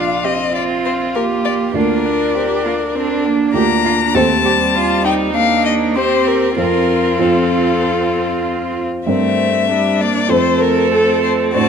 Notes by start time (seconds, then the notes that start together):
Already playing: A#1 D4 F4 A#4 F5
0.24 C4 G4 D#5
0.55 F4 D5
0.85 C5
1.15 A#3 G4 A#4
1.45 D5
1.73 D2 A#3 D4 F4 A#4
2.06 D4
2.35 C4 G4
2.65 A#3 F4
2.95 C4 D4
3.25 A#3
3.53 D2 D4 F4 G4 A#4 A#5
3.85 F4
4.14 D#2 A3 C4 G4 A4 C5 A5
4.45 G3 G4
4.74 F4
5.04 D#4 G5
5.35 A#3 D4 F5
5.65 D#5
5.95 C4 G4 C5
6.27 A#4
6.56 F2 C4 F4 A#4 C5
7.19 F2 C4 F4 A4 C5
9.07 G2 A3 C4 A#4 C5 E5
9.70 G3 D4
10.00 A#3 D5
10.29 F2 A3 C4 A4 C5
10.61 A#4
10.92 A4
11.24 C5
11.53 A2 C4 D4 F#4 C5 A5